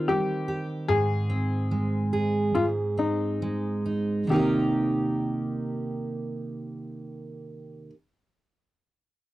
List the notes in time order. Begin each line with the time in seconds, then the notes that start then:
Already playing: D#3 C4 A#4
0.08 G3 G4
0.48 G4
0.88 G#2 G#4
1.30 C4
1.71 G#3
2.13 G#4
2.55 G#2 F4
2.97 C4 D#4
3.42 G#3
3.86 D#4
4.27 C3 D#3 G4
4.31 A#3 D#4 A#4
4.36 G4